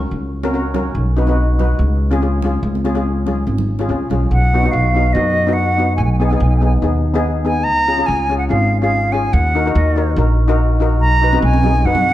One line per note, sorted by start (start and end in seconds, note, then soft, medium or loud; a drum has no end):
0.00 0.22 C#4 medium
0.00 0.23 F#4 medium
0.00 0.23 A#4 medium
0.11 0.91 C#2 medium
0.43 0.49 C#4 loud
0.43 0.50 F#4 medium
0.43 0.50 A#4 loud
0.43 high conga medium
0.54 0.66 C#4 medium
0.54 0.66 F#4 medium
0.54 0.67 A#4 medium
0.74 0.95 C#4 medium
0.74 0.96 F#4 medium
0.74 0.96 A#4 medium
0.74 low conga medium
0.95 1.75 B1 medium
1.17 1.23 D#4 medium
1.17 1.23 F#4 medium
1.17 1.24 B4 medium
1.17 high conga medium
1.27 1.46 D#4 medium
1.27 1.47 F#4 medium
1.27 1.47 B4 medium
1.27 high conga medium
1.59 1.80 D#4 medium
1.59 1.80 F#4 medium
1.59 1.80 B4 medium
1.59 low conga medium
1.79 2.59 C#2 medium
2.11 2.17 C#4 medium
2.11 2.17 F4 medium
2.11 2.18 G#4 loud
2.11 high conga medium
2.22 2.34 C#4 medium
2.22 2.35 F4 medium
2.22 2.35 G#4 medium
2.42 2.68 C#4 medium
2.42 2.69 F4 medium
2.42 2.69 G#4 medium
2.42 low conga medium
2.63 3.43 C#2 loud
2.75 high conga medium
2.85 2.91 C#4 medium
2.85 2.91 F4 medium
2.85 2.92 G#4 loud
2.85 high conga medium
2.95 3.14 C#4 medium
2.95 3.14 F4 medium
2.95 3.15 G#4 medium
2.95 high conga medium
3.26 3.58 C#4 medium
3.26 3.58 F4 medium
3.26 3.59 G#4 medium
3.26 low conga medium
3.47 3.87 G#1 medium
3.47 high conga medium
3.58 low conga medium
3.79 3.85 C#4 medium
3.79 3.86 F4 medium
3.79 3.86 G#4 loud
3.79 high conga medium
3.89 4.08 C#2 medium
3.89 4.02 C#4 medium
3.89 4.02 F4 medium
3.89 4.03 G#4 medium
4.10 4.29 B1 medium
4.10 4.31 C#4 medium
4.10 4.31 F4 medium
4.10 4.32 G#4 medium
4.10 low conga medium
4.31 4.71 B1 medium
4.31 4.73 F#5 loud
4.54 4.59 B3 medium
4.54 4.60 D#4 medium
4.54 4.60 F#4 medium
4.63 4.82 B3 medium
4.63 4.82 D#4 medium
4.63 4.83 F#4 medium
4.72 5.13 B1 medium
4.72 5.15 F5 loud
4.95 5.07 B3 medium
4.95 5.07 D#4 medium
4.95 5.08 F#4 medium
5.13 5.99 F#2 loud
5.13 5.34 B3 medium
5.13 5.34 D#4 medium
5.13 5.34 F#4 medium
5.13 5.55 D#5 loud
5.47 5.65 B3 medium
5.47 5.66 D#4 medium
5.47 5.66 F#4 medium
5.53 5.96 F#5 loud
5.78 5.99 B3 medium
5.78 5.99 D#4 medium
5.78 5.99 F#4 medium
5.97 6.38 B1 loud
5.97 6.04 G#5 loud
6.05 6.12 G#5 medium
6.12 6.18 G#5 medium
6.19 6.26 B3 medium
6.19 6.26 D#4 medium
6.19 6.27 G#4 loud
6.19 6.26 G#5 medium
6.27 6.49 B3 medium
6.27 6.34 G#5 medium
6.32 6.50 D#4 medium
6.32 6.50 G#4 medium
6.32 6.41 G#5 medium
6.40 6.80 B1 loud
6.40 6.49 G#5 medium
6.49 6.56 G#5 medium
6.57 6.64 G#5 medium
6.61 6.74 B3 medium
6.61 6.74 D#4 medium
6.61 6.75 G#4 medium
6.61 6.72 G#5 medium
6.82 7.66 D#2 medium
6.82 7.01 B3 medium
6.82 7.01 D#4 medium
6.82 7.02 G#4 medium
7.14 7.33 B3 loud
7.14 7.33 D#4 medium
7.14 7.33 G#4 loud
7.44 7.66 B3 medium
7.44 7.66 D#4 medium
7.44 7.66 G#4 medium
7.44 7.65 G#5 loud
7.64 8.06 C#2 loud
7.64 8.08 A#5 loud
7.88 7.94 C#4 medium
7.88 7.94 F4 medium
7.88 7.94 G#4 medium
7.98 8.16 C#4 medium
7.98 8.17 F4 medium
7.98 8.17 G#4 medium
8.06 8.48 C#2 loud
8.06 8.38 G#5 loud
8.29 8.42 C#4 medium
8.29 8.42 F4 medium
8.29 8.43 G#4 medium
8.38 8.48 F#5 medium
8.49 9.35 G#1 medium
8.49 8.68 C#4 medium
8.49 8.69 F4 medium
8.49 8.69 G#4 medium
8.49 8.78 F5 loud
8.81 9.00 C#4 medium
8.81 9.01 F4 medium
8.81 9.01 G#4 medium
8.81 9.14 F5 loud
9.12 9.33 C#4 medium
9.12 9.34 F4 medium
9.12 9.34 G#4 medium
9.12 9.35 G#5 medium
9.33 9.73 D#2 loud
9.33 9.75 F#5 loud
9.55 9.61 D#4 medium
9.55 9.61 F#4 medium
9.55 9.62 A#4 medium
9.66 9.84 D#4 medium
9.66 9.85 F#4 medium
9.66 9.85 A#4 medium
9.75 10.15 D#2 loud
9.75 10.14 D#5 medium
9.96 10.09 D#4 medium
9.96 10.09 F#4 medium
9.96 10.09 A#4 medium
10.16 11.01 A#1 loud
10.16 10.36 D#4 medium
10.16 10.36 F#4 medium
10.16 10.37 A#4 medium
10.48 10.67 D#4 loud
10.48 10.67 F#4 medium
10.48 10.68 A#4 loud
10.80 11.01 D#4 medium
10.80 11.01 F#4 medium
10.80 11.02 A#4 medium
11.01 11.40 B1 loud
11.01 11.39 A#5 loud
11.22 11.28 D#4 medium
11.22 11.29 F#4 medium
11.22 11.29 B4 medium
11.33 11.51 D#4 medium
11.33 11.51 F#4 medium
11.33 11.52 B4 medium
11.33 high conga medium
11.42 11.82 B1 loud
11.42 11.87 G#5 loud
11.53 high conga medium
11.63 11.76 D#4 medium
11.63 11.77 F#4 medium
11.63 11.77 G#4 medium
11.63 high conga medium
11.63 low conga medium
11.84 12.13 F#2 medium
11.84 12.04 D#4 medium
11.84 12.04 F#4 medium
11.84 12.04 B4 medium
11.84 12.13 F#5 loud
11.95 high conga medium
11.95 low conga medium